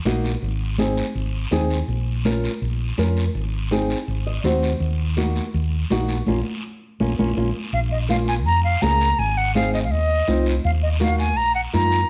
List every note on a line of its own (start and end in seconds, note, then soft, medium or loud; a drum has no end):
0.05 0.35 A#1 medium
0.05 0.31 A#3 medium
0.05 0.31 D#4 medium
0.05 0.32 F#4 medium
0.05 high conga medium
0.05 short guiro medium
0.24 short guiro medium
0.42 1.01 G#1 loud
0.42 high conga soft
0.42 long guiro medium
0.78 1.04 C4 medium
0.78 1.05 D#4 medium
0.78 1.05 G#4 medium
0.78 high conga medium
0.78 short guiro medium
0.97 short guiro medium
1.15 1.45 G#1 medium
1.15 high conga soft
1.15 long guiro medium
1.51 1.81 D#2 medium
1.51 1.77 C4 medium
1.51 1.77 D#4 medium
1.51 1.78 G#4 medium
1.51 high conga medium
1.51 short guiro medium
1.71 short guiro medium
1.88 2.47 A#1 medium
1.88 high conga soft
1.88 long guiro medium
2.25 2.51 C#4 medium
2.25 2.51 F4 medium
2.25 2.51 A#4 medium
2.25 high conga medium
2.25 short guiro medium
2.44 short guiro medium
2.62 2.91 A#1 medium
2.62 high conga soft
2.62 long guiro medium
2.98 3.27 F2 medium
2.98 3.24 C#4 medium
2.98 3.24 F4 medium
2.98 3.24 A#4 medium
2.98 high conga medium
2.98 short guiro medium
3.17 short guiro medium
3.35 3.93 G#1 medium
3.35 high conga soft
3.35 long guiro medium
3.71 3.97 C4 medium
3.71 3.97 D#4 medium
3.71 3.97 G#4 medium
3.71 high conga medium
3.71 short guiro medium
3.90 short guiro medium
4.08 4.37 G#1 medium
4.08 high conga soft
4.08 long guiro medium
4.27 4.43 D#5 medium
4.44 4.73 D#2 medium
4.44 4.70 C4 medium
4.44 4.70 D#4 medium
4.44 4.71 F#4 medium
4.44 4.79 C5 medium
4.44 high conga medium
4.44 short guiro medium
4.63 short guiro medium
4.80 5.39 D#2 loud
4.80 high conga soft
4.80 long guiro medium
5.17 5.43 A#3 medium
5.17 5.43 D#4 medium
5.17 5.43 F#4 medium
5.17 high conga medium
5.17 short guiro medium
5.36 short guiro medium
5.54 5.83 D#2 medium
5.54 high conga soft
5.54 long guiro medium
5.90 6.20 A#1 medium
5.90 6.16 A#3 medium
5.90 6.16 D#4 medium
5.90 6.17 F#4 medium
5.90 high conga medium
5.90 short guiro medium
6.08 short guiro medium
6.27 6.41 A#1 medium
6.27 6.39 A#3 medium
6.27 6.39 C#4 medium
6.27 6.39 F4 medium
6.27 high conga medium
6.27 long guiro medium
7.00 7.14 A#1 medium
7.00 7.12 A#3 medium
7.00 7.12 C#4 medium
7.00 7.12 F4 medium
7.00 high conga medium
7.00 long guiro medium
7.18 7.32 A#1 medium
7.18 7.31 A#3 medium
7.18 7.31 C#4 medium
7.18 7.30 F4 medium
7.18 high conga medium
7.18 long guiro medium
7.37 7.51 A#1 medium
7.37 7.49 A#3 medium
7.37 7.49 C#4 medium
7.37 7.49 F4 medium
7.37 high conga medium
7.37 long guiro medium
7.73 8.46 A#1 medium
7.73 7.79 F5 medium
7.73 high conga soft
7.73 long guiro medium
7.91 7.97 D#5 medium
8.09 8.35 A#3 medium
8.09 8.35 C#4 medium
8.09 8.35 F4 medium
8.09 8.16 F5 medium
8.09 high conga medium
8.09 short guiro medium
8.28 8.34 G#5 medium
8.28 short guiro medium
8.46 8.75 F2 medium
8.46 8.63 A#5 loud
8.46 high conga soft
8.46 long guiro medium
8.64 8.83 F5 medium
8.82 9.12 C#2 medium
8.82 9.08 A#3 medium
8.82 9.08 C#4 medium
8.82 9.08 G#4 medium
8.82 9.20 A#5 loud
8.82 high conga medium
8.82 short guiro medium
9.01 short guiro medium
9.19 9.92 G#1 medium
9.19 9.39 G#5 loud
9.19 high conga soft
9.19 long guiro medium
9.37 9.55 F#5 medium
9.55 9.81 C4 medium
9.55 9.81 D#4 medium
9.55 9.81 G#4 medium
9.55 9.72 F5 medium
9.55 high conga medium
9.55 short guiro medium
9.74 9.79 D#5 medium
9.74 short guiro medium
9.84 9.93 F5 medium
9.91 10.21 D#2 medium
9.91 10.46 D#5 medium
9.91 high conga soft
9.91 long guiro medium
10.28 10.57 C2 medium
10.28 10.53 C4 medium
10.28 10.54 D#4 medium
10.28 10.54 F4 medium
10.28 high conga medium
10.28 short guiro medium
10.46 short guiro medium
10.64 11.37 D#2 medium
10.64 10.71 F5 medium
10.64 high conga soft
10.64 long guiro medium
10.83 10.89 D#5 medium
11.00 11.26 A#3 medium
11.00 11.26 D#4 medium
11.00 11.26 F#4 medium
11.00 11.18 F5 medium
11.00 high conga medium
11.00 short guiro medium
11.19 11.38 G#5 medium
11.19 short guiro medium
11.37 11.66 A#1 medium
11.37 11.54 A#5 loud
11.37 high conga soft
11.37 long guiro medium
11.55 11.61 F#5 medium
11.73 12.03 F#2 medium
11.73 11.99 A#3 medium
11.73 11.99 D#4 medium
11.73 11.99 F4 medium
11.73 12.08 A#5 loud
11.73 high conga medium
11.73 short guiro medium
11.92 short guiro medium